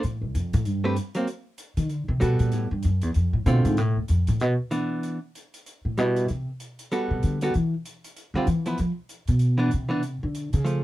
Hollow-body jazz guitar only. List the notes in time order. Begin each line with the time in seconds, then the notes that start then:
0.84 A3 C4 G4 B4
1.15 F#3 A#3 C4
2.20 G3 B3 F#4 A4
3.46 D3 A3 C4 F4
4.71 E3 B3 D4
5.98 G3 E4
6.92 G3 B3 F#4 A4
7.42 G3 B3 F#4 A4
8.35 D3 G3 C4 F4
8.66 F3 B3 E4
9.58 E3 B3 D4
9.89 E3 B3 D4
10.65 F3 A3